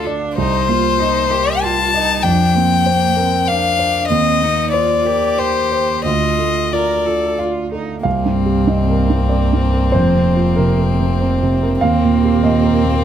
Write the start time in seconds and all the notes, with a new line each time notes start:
Already playing: D2 A3 A4 D5 F5
0.06 D4 D5
0.37 C2 D#4 C5
0.68 A#3 F4
0.98 D#4 D#5
1.31 G4 A#4
1.60 F4 G5 A5
1.94 D#4 D#5
2.22 F2 D4 G5
2.55 A#3 C4
2.86 A#3 C5
3.17 C4 A#4
3.47 D4 F5
3.79 C5
4.08 D#2 C4 D#5
4.41 A#3 D#4
4.72 F4 C5 D5
5.05 G4 A#4
5.38 C5 G5
5.72 C5
6.04 D2 F4 D#5
6.39 A3
6.72 F4 A#4 D5
7.05 F4 A4
7.38 F4 F5
7.72 D#4 A4
8.03 C2 A#3 C4 F5
8.26 G2
8.46 G4
8.67 G2 D#5
8.89 A#4
9.10 G2
9.29 C4 D5
9.53 G2
9.74 A#4
9.92 F1 F2 C5
10.16 C3
10.36 F4
10.56 C3 A#4
10.80 A#4
11.00 C3
11.21 C4
11.43 C3
11.63 A#4
11.81 D#2 A#3 C4 F5
12.04 A#2
12.25 G4
12.43 A#2 D#5
12.64 A#4
12.85 A#2